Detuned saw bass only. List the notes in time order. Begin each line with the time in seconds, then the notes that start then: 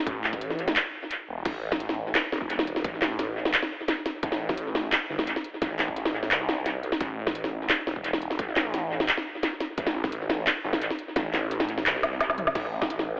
0.07 A1
1.28 E1
1.45 A1
2.32 E1
2.85 A1
4.23 A1
5.10 G1
5.19 A1
5.62 A1
6.31 C2
7.01 A1
7.87 E1
8.39 A1
9.78 A1
10.64 G1
10.73 A1
11.16 A1
11.86 C2
12.55 A1